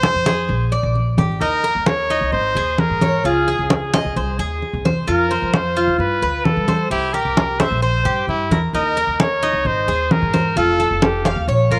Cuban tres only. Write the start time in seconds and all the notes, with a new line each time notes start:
Already playing: C5
0.26 G#4
0.72 D5
1.18 G4
1.41 D#4
1.64 A#4
2.10 D#4
2.57 G#4
3.02 C#5
3.25 F4
3.48 G#4
3.94 D#5
4.16 C5
4.39 G#4
4.85 C5
5.08 F4
5.31 C5
5.77 F4
6.22 B4
6.68 C5
6.91 E4
7.14 G4
7.60 E5
7.82 C5
8.05 G4
8.51 A#4
8.75 D#4
8.97 A#4
9.43 D#4
9.88 G#4
10.34 C5
10.57 F4
10.80 A4
11.26 F5
11.48 C#5
11.71 A#4